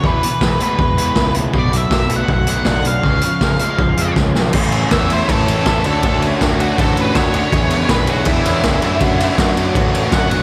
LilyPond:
<<
  \new Staff \with { instrumentName = "Tonewheel organ" } { \time 4/4 \key a \major \tempo 4 = 160 << { r1 | r1 | r1 | <cis'' e'' cis'''>2.~ <cis'' e'' cis'''>8 <d' fis''>8~ |
<d' fis''>1 | <e'' gis''>2.~ <e'' gis''>8 <d'' fis''>8~ | <d'' fis''>1 | } \\ { r1 | r1 | r1 | a'1~ |
a'1 | b'2.~ b'8 a'8~ | a'1 | } >> }
  \new Staff \with { instrumentName = "Lead electric guitar" } { \time 4/4 \key a \major b'4. b'2 r8 | d''8 e''4 fis''8 fis''4 fis''8 f''8~ | f''2. r4 | r4 e''8 c''8 a'4. a'8~ |
a'8 r4 fis'8 a'8 b'8 cis''4~ | cis''4 b'8 fis'8 e'2~ | e'4 r2 fis''4 | }
  \new Staff \with { instrumentName = "Overdriven electric guitar" } { \time 4/4 \key a \major e8 e8 gis8 b8 gis8 b8 e'8 gis8 | b,8 b,8 fis8 a8 fis8 a8 d'8 fis8 | cis8 cis8 eis8 gis8 eis8 gis8 cis'8 eis8 | <a, e a cis' e'>4 <a, e a cis' e'>8 <a, e a cis' e'>8 <a, e a cis' e'>4 <a, e a cis' e'>8 <d a d' fis'>8 |
<d a d' fis'>4 <d a d' fis'>8 <d a d' fis'>8 <d a d' fis'>4 <d a d' fis'>8 <d a d' fis'>8 | <e b d' gis'>4 <e b d' gis'>8 <e b d' gis'>8 <e b d' gis'>4 <e b d' gis'>8 <fis a d' fis'>8 | <fis a d' fis'>4 <fis a d' fis'>8 <fis a d' fis'>8 <fis a d' fis'>4 <fis a d' fis'>8 <fis a d' fis'>8 | }
  \new Staff \with { instrumentName = "Overdriven electric guitar" } { \clef bass \time 4/4 \key a \major <e, b, e>8 <e, b,>8 <e, b,>8 <e, b, e>8 <e, b,>8 <e, b, e>8 <e, b,>8 <e, b,>8 | <b, fis b>8 <b, fis>8 <b, fis>8 <b, fis b>8 <b, fis>8 <b, fis b>8 <b, fis>8 <b, fis>8 | <cis eis gis>8 <cis eis>8 <cis eis>8 <cis eis gis>8 <cis eis>8 <cis eis gis>8 <cis eis>8 <cis eis>8 | <a, e a cis' e'>4 <a, e a cis' e'>8 <a, e a cis' e'>8 <a, e a cis' e'>4 <a, e a cis' e'>8 <d a d' fis'>8 |
<d a d' fis'>4 <d a d' fis'>8 <d a d' fis'>8 <d a d' fis'>4 <d a d' fis'>8 <d a d' fis'>8 | <e, b, e gis d' e'>4 <e, b, e gis d' e'>8 <e, b, e gis d' e'>8 <e, b, e gis d' e'>4 <e, b, e gis d' e'>8 <fis a d' fis'>8 | <fis a d' fis'>4 <fis a d' fis'>8 <fis a d' fis'>8 <fis a d' fis'>4 <fis a d' fis'>8 <fis a d' fis'>8 | }
  \new Staff \with { instrumentName = "Picked electric bass" } { \clef bass \time 4/4 \key a \major e,8 r8 e8 r8 e,4 cis,4 | b,,4 b,,4 b,,4 b,,4 | cis,8 r8 cis8 r8 cis,8 eis,8 cis,8 b,,8 | a,,4 e,4 a,,8 a,,8 a,,8 d,8~ |
d,4 d,4 a,,4 d,8 d,16 r16 | e,4 b,,4 e,8 e,8 cis,8 fis,8~ | fis,4 fis,4 a,,4 fis,8 b,,16 r16 | }
  \new DrumStaff \with { instrumentName = "Drums" } \drummode { \time 4/4 bd8 hh8 <bd sn>8 hh8 bd8 hh8 <bd sn>8 hh8 | bd8 hh8 <bd sn>8 hh8 bd8 hh8 <bd sn>8 hh8 | bd8 hh8 <bd sn>8 hh8 bd8 hh8 <bd sn>8 sn8 | <cymc bd>8 cymr8 <bd cymr sn>8 cymr8 <bd cymr>8 cymr8 <bd cymr sn>8 cymr8 |
<bd cymr>8 cymr8 <bd cymr sn>8 cymr8 <bd cymr>8 cymr8 <bd cymr sn>8 cymr8 | <bd cymr>8 cymr8 <bd cymr sn>8 cymr8 <bd cymr>8 cymr8 <bd cymr sn>8 cymr8 | <bd cymr>8 cymr8 <bd cymr sn>8 cymr8 <bd cymr>8 cymr8 <bd cymr sn>8 cymr8 | }
>>